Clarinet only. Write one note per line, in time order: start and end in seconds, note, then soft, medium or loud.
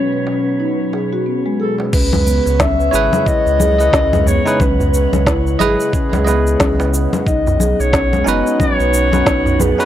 0.00 1.27 C#5 loud
1.61 1.75 A4 medium
1.93 2.62 B4 loud
2.61 3.28 E5 loud
3.27 4.29 D#5 loud
4.27 4.62 C#5 loud
4.61 5.59 B4 loud
5.60 5.75 G#4 medium
5.93 6.89 G#4 medium
7.27 7.81 D#5 medium
7.80 8.28 C#5 loud
8.27 8.61 D#5 medium
8.60 9.61 C#5 loud
9.60 9.85 B4 medium